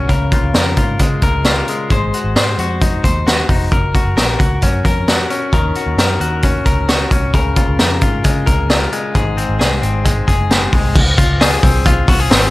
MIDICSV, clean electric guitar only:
0, 0, Header, 1, 2, 480
1, 0, Start_track
1, 0, Key_signature, -5, "major"
1, 0, Tempo, 452148
1, 94, Time_signature, 4, 2, 24, 8
1, 13272, End_track
2, 0, Start_track
2, 0, Title_t, "Clean electric guitar"
2, 0, Program_c, 0, 27
2, 0, Note_on_c, 0, 61, 57
2, 0, Note_on_c, 0, 66, 54
2, 95, Note_on_c, 0, 49, 77
2, 101, Note_on_c, 0, 70, 63
2, 142, Note_off_c, 0, 66, 0
2, 147, Note_off_c, 0, 61, 0
2, 343, Note_on_c, 0, 65, 54
2, 572, Note_off_c, 0, 70, 0
2, 585, Note_on_c, 0, 70, 60
2, 811, Note_off_c, 0, 65, 0
2, 824, Note_on_c, 0, 65, 58
2, 1069, Note_on_c, 0, 56, 50
2, 1295, Note_off_c, 0, 70, 0
2, 1308, Note_on_c, 0, 70, 67
2, 1537, Note_off_c, 0, 65, 0
2, 1550, Note_on_c, 0, 65, 56
2, 1793, Note_off_c, 0, 56, 0
2, 1797, Note_on_c, 0, 56, 60
2, 2020, Note_off_c, 0, 49, 0
2, 2025, Note_off_c, 0, 70, 0
2, 2032, Note_off_c, 0, 56, 0
2, 2032, Note_on_c, 0, 56, 64
2, 2038, Note_on_c, 0, 72, 64
2, 2073, Note_off_c, 0, 65, 0
2, 2276, Note_on_c, 0, 66, 50
2, 2495, Note_off_c, 0, 72, 0
2, 2507, Note_on_c, 0, 72, 61
2, 2752, Note_off_c, 0, 66, 0
2, 2756, Note_on_c, 0, 66, 58
2, 2991, Note_on_c, 0, 63, 46
2, 3215, Note_off_c, 0, 72, 0
2, 3228, Note_on_c, 0, 72, 62
2, 3463, Note_off_c, 0, 66, 0
2, 3468, Note_on_c, 0, 66, 54
2, 3696, Note_off_c, 0, 63, 0
2, 3708, Note_on_c, 0, 63, 51
2, 3946, Note_off_c, 0, 72, 0
2, 3950, Note_off_c, 0, 56, 0
2, 3951, Note_on_c, 0, 70, 61
2, 3994, Note_off_c, 0, 63, 0
2, 4187, Note_off_c, 0, 66, 0
2, 4192, Note_on_c, 0, 66, 59
2, 4421, Note_off_c, 0, 70, 0
2, 4425, Note_on_c, 0, 70, 56
2, 4656, Note_off_c, 0, 66, 0
2, 4660, Note_on_c, 0, 66, 56
2, 4915, Note_on_c, 0, 61, 46
2, 5149, Note_off_c, 0, 70, 0
2, 5153, Note_on_c, 0, 70, 63
2, 5389, Note_off_c, 0, 66, 0
2, 5393, Note_on_c, 0, 66, 58
2, 5627, Note_off_c, 0, 61, 0
2, 5632, Note_on_c, 0, 61, 58
2, 5871, Note_on_c, 0, 51, 72
2, 5875, Note_off_c, 0, 70, 0
2, 5879, Note_on_c, 0, 70, 66
2, 5919, Note_off_c, 0, 66, 0
2, 6118, Note_on_c, 0, 66, 51
2, 6352, Note_off_c, 0, 70, 0
2, 6356, Note_on_c, 0, 70, 57
2, 6578, Note_off_c, 0, 66, 0
2, 6591, Note_on_c, 0, 66, 56
2, 6829, Note_off_c, 0, 61, 0
2, 6833, Note_on_c, 0, 61, 54
2, 7062, Note_off_c, 0, 70, 0
2, 7066, Note_on_c, 0, 70, 63
2, 7297, Note_off_c, 0, 66, 0
2, 7310, Note_on_c, 0, 66, 57
2, 7553, Note_off_c, 0, 61, 0
2, 7558, Note_on_c, 0, 61, 55
2, 7788, Note_off_c, 0, 70, 0
2, 7791, Note_off_c, 0, 51, 0
2, 7796, Note_on_c, 0, 49, 75
2, 7802, Note_on_c, 0, 70, 66
2, 7838, Note_off_c, 0, 66, 0
2, 7842, Note_off_c, 0, 61, 0
2, 8035, Note_on_c, 0, 65, 60
2, 8266, Note_off_c, 0, 70, 0
2, 8279, Note_on_c, 0, 70, 58
2, 8500, Note_off_c, 0, 65, 0
2, 8513, Note_on_c, 0, 65, 58
2, 8749, Note_on_c, 0, 56, 53
2, 8972, Note_off_c, 0, 70, 0
2, 8985, Note_on_c, 0, 70, 64
2, 9221, Note_off_c, 0, 65, 0
2, 9234, Note_on_c, 0, 65, 54
2, 9472, Note_off_c, 0, 56, 0
2, 9476, Note_on_c, 0, 56, 61
2, 9707, Note_off_c, 0, 70, 0
2, 9713, Note_off_c, 0, 49, 0
2, 9714, Note_on_c, 0, 44, 73
2, 9721, Note_on_c, 0, 68, 62
2, 9760, Note_off_c, 0, 65, 0
2, 9949, Note_on_c, 0, 60, 55
2, 10180, Note_off_c, 0, 68, 0
2, 10184, Note_on_c, 0, 68, 58
2, 10419, Note_off_c, 0, 60, 0
2, 10423, Note_on_c, 0, 60, 54
2, 10662, Note_off_c, 0, 56, 0
2, 10666, Note_on_c, 0, 56, 51
2, 10906, Note_off_c, 0, 68, 0
2, 10910, Note_on_c, 0, 68, 60
2, 11147, Note_off_c, 0, 60, 0
2, 11151, Note_on_c, 0, 60, 56
2, 11377, Note_off_c, 0, 56, 0
2, 11389, Note_on_c, 0, 56, 57
2, 11629, Note_off_c, 0, 44, 0
2, 11675, Note_off_c, 0, 68, 0
2, 11676, Note_off_c, 0, 56, 0
2, 11676, Note_off_c, 0, 60, 0
2, 11866, Note_on_c, 0, 65, 63
2, 12111, Note_on_c, 0, 68, 77
2, 12348, Note_on_c, 0, 60, 63
2, 12589, Note_off_c, 0, 65, 0
2, 12593, Note_on_c, 0, 65, 68
2, 12825, Note_off_c, 0, 68, 0
2, 12831, Note_on_c, 0, 66, 72
2, 12950, Note_off_c, 0, 66, 0
2, 12950, Note_on_c, 0, 68, 68
2, 13049, Note_off_c, 0, 60, 0
2, 13062, Note_on_c, 0, 60, 72
2, 13272, Note_off_c, 0, 60, 0
2, 13272, Note_off_c, 0, 65, 0
2, 13272, Note_off_c, 0, 68, 0
2, 13272, End_track
0, 0, End_of_file